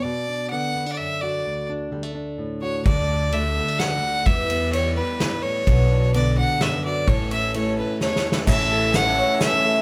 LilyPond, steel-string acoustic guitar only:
\new Staff \with { instrumentName = "Steel-string acoustic guitar" } { \time 3/4 \key d \major \tempo 4 = 128 << { b8 d'8 b8 b16 d'8. fis'8 | r8 d'8 g16 a16 d'4 fis'8 | r8 d'8 a8 b16 d'4~ d'16 | r8 b8 g8 b4.~ |
b8 d'8 b8 d'4 fis'8 | r8 cis'8 a8 cis'4 e'8~ | e'2. | } \\ { b,4 d4 fis,4 | d,4 d4 a,4 | d,4 d4. d,8 | e,4 e4 g,8 a,8 |
b,4 d4 fis,4 | a,4 e4 e,4 | r2. | } >> }